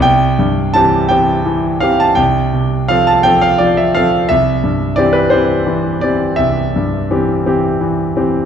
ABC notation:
X:1
M:12/8
L:1/16
Q:3/8=56
K:C
V:1 name="Grand piano"
g4 a2 g4 f a g4 f a g f d e f2 | e4 d B c4 d2 e8- e2 z2 |]
V:2 name="Grand piano" clef=bass
C,,2 G,,2 [E,CG]2 [E,CG]2 E,2 [E,CG]2 C,,2 C,2 [F,CA]2 [F,CA]2 F,2 [F,CA]2 | C,,2 G,,2 [E,CG]2 [E,CG]2 E,2 [E,CG]2 C,,2 G,,2 [E,CG]2 [E,CG]2 E,2 [E,CG]2 |]